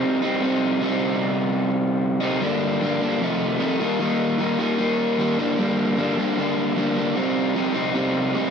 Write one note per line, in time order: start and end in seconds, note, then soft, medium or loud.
0.00 0.24 G3 medium
0.00 0.22 C4 medium
0.00 0.21 D#4 medium
0.22 0.41 G3 medium
0.22 0.43 C4 medium
0.22 0.43 D#4 medium
0.41 0.80 C3 medium
0.41 0.81 G3 medium
0.41 0.82 C4 medium
0.41 0.82 D#4 medium
0.82 2.20 C3 medium
0.82 2.20 G3 medium
0.82 2.21 C4 medium
0.82 2.19 D#4 medium
2.20 2.41 C3 medium
2.20 2.40 G3 medium
2.20 2.40 C4 medium
2.20 2.40 D#4 medium
2.40 2.79 G2 loud
2.40 2.80 D3 loud
2.40 2.81 G3 loud
2.40 2.81 A#3 loud
2.40 2.81 D4 loud
2.80 3.00 G2 medium
2.80 3.00 D3 medium
2.80 3.01 G3 medium
2.80 3.01 A#3 medium
2.80 3.02 D4 loud
3.01 3.20 G2 medium
3.01 3.20 D3 medium
3.01 3.20 G3 loud
3.01 3.20 A#3 medium
3.01 3.20 D4 loud
3.21 3.58 F2 medium
3.21 3.59 C3 medium
3.21 3.59 D#3 medium
3.21 3.60 A3 loud
3.21 3.60 D#4 medium
3.59 3.78 F2 medium
3.59 3.79 C3 medium
3.59 3.79 D#3 medium
3.59 3.79 A3 medium
3.59 3.79 D#4 medium
3.80 3.98 D#3 loud
3.80 4.00 G3 loud
3.80 4.00 A#3 loud
3.80 4.00 D#4 loud
3.99 4.38 D#3 loud
3.99 4.39 G3 loud
3.99 4.40 A#3 loud
3.99 4.39 D#4 loud
4.39 4.57 D#3 medium
4.39 4.59 G3 medium
4.39 4.59 A#3 medium
4.39 4.59 D#4 medium
4.58 4.77 D#3 medium
4.58 4.78 G3 medium
4.58 4.79 A#3 loud
4.58 4.78 D#4 loud
4.78 5.17 D#3 medium
4.78 5.19 G3 medium
4.78 5.20 A#3 medium
4.78 5.19 D#4 loud
5.19 5.37 D#3 medium
5.19 5.39 G3 loud
5.19 5.39 A#3 medium
5.19 5.38 D#4 medium
5.38 5.57 G2 loud
5.38 5.58 D3 loud
5.38 5.59 G3 loud
5.38 5.60 A#3 loud
5.38 5.59 D4 loud
5.58 5.96 G2 loud
5.58 5.96 D3 loud
5.58 5.98 G3 loud
5.58 5.99 A#3 loud
5.58 5.98 D4 loud
5.97 6.17 G2 medium
5.97 6.17 D3 medium
5.97 6.19 G3 medium
5.97 6.19 A#3 medium
5.97 6.19 D4 medium
6.18 6.36 G2 loud
6.18 6.37 D3 loud
6.18 6.38 G3 medium
6.18 6.39 A#3 medium
6.18 6.38 D4 loud
6.37 6.75 G2 medium
6.37 6.76 D3 medium
6.37 6.77 G3 medium
6.37 6.77 A#3 loud
6.37 6.78 D4 loud
6.76 6.95 G2 medium
6.76 6.95 D3 loud
6.76 6.97 G3 medium
6.76 6.98 A#3 loud
6.76 6.97 D4 loud
6.96 7.15 G2 medium
6.96 7.15 D3 medium
6.96 7.16 G3 medium
6.96 7.16 A#3 loud
6.96 7.16 D4 loud
7.16 7.54 C3 loud
7.16 7.54 G3 loud
7.16 7.55 C4 loud
7.16 7.56 D#4 loud
7.56 7.72 C3 medium
7.56 7.73 G3 loud
7.56 7.73 C4 loud
7.56 7.74 D#4 medium
7.73 7.93 C3 medium
7.73 7.94 G3 medium
7.73 7.95 C4 medium
7.73 7.94 D#4 loud
7.95 8.34 C3 medium
7.95 8.34 G3 medium
7.95 8.35 C4 medium
7.95 8.36 D#4 medium
8.35 8.50 C3 medium
8.35 8.50 G3 medium
8.35 8.50 C4 medium
8.35 8.50 D#4 loud